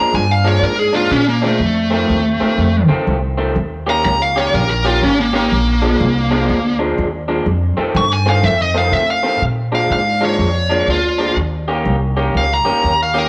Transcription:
Already playing: clean electric guitar A#2 F3 G#3 D4, lead electric guitar A#5
0.13 upright bass G2, lead electric guitar G#5
0.31 lead electric guitar F5
0.44 clean electric guitar A#2 F3 G#3 D4, lead electric guitar C#5
0.62 upright bass G#2, lead electric guitar A#4
0.79 lead electric guitar G#4
0.93 clean electric guitar A#2 F3 G#3 D4, lead electric guitar F4
1.11 upright bass A#2, lead electric guitar C#4
1.29 lead electric guitar A#3
1.42 clean electric guitar A#2 F3 G#3 D4
1.46 lead electric guitar A3
1.60 upright bass F2
1.90 clean electric guitar F2 D#3 A3 C4
2.09 upright bass D#2
2.40 clean electric guitar F2 D#3 A3 C4, muted upright bass stroke
2.58 upright bass F2
2.89 clean electric guitar F2 D#3 A3 C4, muted upright bass stroke
3.07 upright bass C2
3.38 clean electric guitar F2 D#3 A3 C4
3.56 upright bass D#2
3.87 clean electric guitar D#3 A#3 C#4 G4, lead electric guitar A#5
4.05 upright bass C#2, lead electric guitar A#5
4.22 lead electric guitar F5
4.36 clean electric guitar D#3 A#3 C#4 G4, lead electric guitar C#5
4.53 upright bass A#1, lead electric guitar A#4
4.70 lead electric guitar A#4
4.85 clean electric guitar D#3 A#3 C#4 G4, lead electric guitar F4
5.02 upright bass G#1, lead electric guitar C#4
5.20 lead electric guitar A#3
5.33 clean electric guitar D#3 A#3 C#4 G4, lead electric guitar A#3
5.52 upright bass A#1
5.82 clean electric guitar A#2 F3 G#3 D4
6.00 upright bass C2
6.31 clean electric guitar A#2 F3 G#3 D4
6.49 upright bass D2
6.79 clean electric guitar A#2 F3 G#3 D4
6.98 upright bass D#2
7.28 clean electric guitar A#2 F3 G#3 D4
7.46 upright bass F2
7.77 clean electric guitar F2 D#3 A3 C4, muted upright bass stroke
7.95 upright bass G2, lead electric guitar C#6
8.13 lead electric guitar G#5
8.26 clean electric guitar F2 D#3 A3 C4, lead electric guitar F5
8.43 upright bass F2, lead electric guitar E5
8.62 lead electric guitar D#5
8.74 clean electric guitar F2 D#3 A3 C4, lead electric guitar F5
8.92 upright bass A2, lead electric guitar E5
9.10 lead electric guitar F5
9.23 clean electric guitar F2 D#3 A3 C4
9.41 upright bass A#2
9.72 clean electric guitar A#2 F3 G#3 D4, lead electric guitar F5
9.90 upright bass G#2, lead electric guitar F5
10.21 clean electric guitar A#2 F3 G#3 D4, lead electric guitar C#5
10.39 upright bass F2
10.70 clean electric guitar A#2 F3 G#3 D4
10.87 upright bass D2, lead electric guitar F4
11.18 clean electric guitar A#2 F3 G#3 D4
11.36 upright bass D#2
11.68 clean electric guitar D#3 A#3 C#4 G4
11.85 upright bass C2
12.17 clean electric guitar D#3 A#3 C#4 G4
12.34 upright bass C#2, lead electric guitar F5
12.54 lead electric guitar A#5
12.65 clean electric guitar D#3 A#3 C#4 G4, muted upright bass stroke
12.84 upright bass D#2
13.03 lead electric guitar F5
13.14 clean electric guitar D#3 A#3 C#4 G4
13.19 lead electric guitar A#4

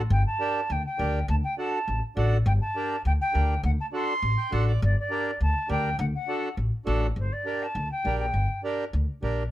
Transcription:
0.10 upright bass G1, flute G5
0.26 flute A5
0.40 accordion D4 G4 A#4
0.70 upright bass D2, flute G5
0.85 flute G5
0.99 upright bass D2, accordion D4 G4 A#4
1.28 upright bass D2, flute A5
1.43 flute G5
1.58 accordion D4 F#4 A4, flute A5
1.88 upright bass A1
2.16 upright bass A1, accordion D4 F#4 A4
2.46 upright bass G1, flute G5
2.61 flute A5
2.76 accordion D4 G4 A#4
3.05 upright bass D2, flute G5
3.21 flute G5
3.33 upright bass D2, accordion D4 G4 A#4
3.63 upright bass D2, flute F#5
3.80 flute A5
3.93 accordion D4 F#4 A4, flute C6
4.22 upright bass A1
4.38 accordion G5
4.51 upright bass A1, accordion D4 F#4 A4 F#5
4.68 accordion D5
4.82 upright bass G1, flute D5
4.99 flute D5
5.10 accordion D4 G4 A#4
5.41 upright bass D2, flute A5
5.69 upright bass D2, accordion D4 G4 A#4, flute G5
5.99 upright bass D2, flute F#5
6.14 flute F#5
6.28 accordion D4 F#4 A4
6.57 upright bass A1
6.86 upright bass A1, accordion D4 F#4 A4
7.16 upright bass G1, flute C5
7.32 flute D5
7.45 accordion D4 G4 A#4
7.62 flute A5
7.75 upright bass D2
7.91 flute G5
8.05 upright bass A#1, accordion D4 G4 A#4
8.19 flute G5
8.34 upright bass G1
8.63 accordion D4 G4 A#4
8.93 upright bass D2
9.23 upright bass A#1, accordion D4 G4 A#4

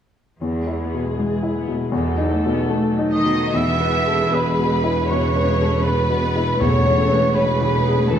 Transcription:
0.40 cello section E2, grand piano E2, viola section E3 G#4
0.61 viola section G#3
0.67 grand piano E4
0.81 viola section B3
0.94 grand piano B2
1.01 viola section G#3
1.18 viola section E3, grand piano G#3
1.38 viola section G#3
1.43 grand piano E4
1.56 viola section B3
1.68 grand piano B2
1.74 viola section G#3
1.92 grand piano E2, cello section E2, viola section D#3 A4
2.11 viola section F#3
2.18 grand piano D#4
2.30 viola section A3
2.46 grand piano B2, viola section B3
2.69 viola section A3, grand piano A3
2.90 viola section F#3
2.99 grand piano D#4
3.12 viola section D#3, cello section D#3, violin section D#5, cor anglais D#5
3.25 grand piano B2
3.34 viola section F#3
3.53 tuba E1, grand piano E2, double bass section E2, cello section E3, viola section B3 G#4, violin section E5, cor anglais E5
3.81 grand piano B4
4.07 grand piano A4
4.32 cello section B2, viola section G#3, grand piano B4, violin section B4, cor anglais B4
4.59 grand piano B2
4.84 grand piano E4
5.08 grand piano B2, cello section C#3, viola section G#3 B4, violin section C#5, cor anglais C#5
5.36 grand piano B4
5.47 viola section B4
5.61 grand piano A4
5.83 cello section B2, viola section B3, violin section B4, cor anglais B4, grand piano B4
6.10 grand piano B2
6.36 grand piano E4
6.60 tuba E1, grand piano E2, timpani E2, double bass section E2, cello section C#3, viola section A3 A4, cor anglais C#5, violin section C#5
6.86 grand piano C#5
7.11 grand piano B4
7.34 cello section B2, viola section G#4, cor anglais B4, violin section B4, grand piano C#5
7.61 grand piano E3
7.86 grand piano G#4
8.09 cello section A2, grand piano E3, viola section F#4, violin section A4, cor anglais A4

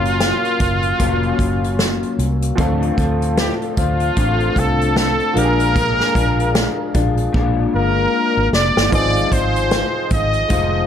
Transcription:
Already playing: fingered electric bass F#1, clean electric guitar F#3 A#3 C#4 F4, upright piano F#3 C#4 F4 A#4, trumpet F4
0.05 closed hi-hat
0.20 snare, closed hi-hat
0.45 closed hi-hat
0.60 fingered electric bass F#1, kick, closed hi-hat
0.83 closed hi-hat
0.99 fingered electric bass F1, clean electric guitar F#3 A#3 C#4, kick, closed hi-hat
1.03 clean electric guitar F4
1.23 closed hi-hat
1.39 fingered electric bass F#1, kick, closed hi-hat
1.64 closed hi-hat
1.79 snare, closed hi-hat
2.03 closed hi-hat
2.19 fingered electric bass C2, closed hi-hat
2.42 closed hi-hat
2.56 fingered electric bass D2, clean electric guitar D3 A3 C4, upright piano F3 C4 D4, kick, closed hi-hat
2.60 clean electric guitar F4, upright piano A4
2.82 closed hi-hat
2.97 fingered electric bass D2, clean electric guitar A3 C4 F4, kick, closed hi-hat
3.22 closed hi-hat
3.37 trumpet G4, snare, closed hi-hat
3.62 closed hi-hat
3.77 fingered electric bass D2, clean electric guitar A3 C4 F4, trumpet F4, kick, closed hi-hat
4.00 closed hi-hat
4.16 fingered electric bass A1, clean electric guitar D3 A3 C4 F4, kick, closed hi-hat
4.40 closed hi-hat
4.56 fingered electric bass C2, trumpet A4, kick, closed hi-hat
4.81 closed hi-hat
4.96 trumpet A4, snare, closed hi-hat
5.20 closed hi-hat
5.33 fingered electric bass A#1, clean electric guitar A#2 G#3 D4 F4, upright piano F3 A#3 D4, closed hi-hat
5.38 upright piano G4, trumpet A#4
5.45 upright piano G#4
5.60 closed hi-hat
5.76 kick, closed hi-hat
6.00 snare
6.15 fingered electric bass A#1, clean electric guitar G#3 D4 F4, kick, closed hi-hat
6.40 closed hi-hat
6.55 snare, closed hi-hat
6.94 fingered electric bass A#1, clean electric guitar G#3 D4 F4, kick, closed hi-hat
7.17 closed hi-hat
7.33 fingered electric bass A#1, clean electric guitar A#2 G#3 D4, kick
7.37 clean electric guitar F4
7.74 fingered electric bass G1, trumpet A#4
8.37 fingered electric bass G#1
8.53 fingered electric bass F1, trumpet D5, snare
8.77 fingered electric bass G1, snare
8.90 fingered electric bass G#1, upright piano F3 B3 D#4, clean electric guitar G#3 D#4 F4 C5, kick, closed hi-hat
8.94 upright piano C4 G#4, trumpet D5
9.16 closed hi-hat
9.31 fingered electric bass G#1, clean electric guitar D#4 F4 C5, trumpet C5, kick, closed hi-hat
9.56 closed hi-hat
9.71 snare, closed hi-hat
10.10 fingered electric bass G#1, trumpet D#5, kick, closed hi-hat
10.33 closed hi-hat
10.49 fingered electric bass F1, clean electric guitar G#3 D#4 F4, kick, closed hi-hat
10.53 clean electric guitar C5

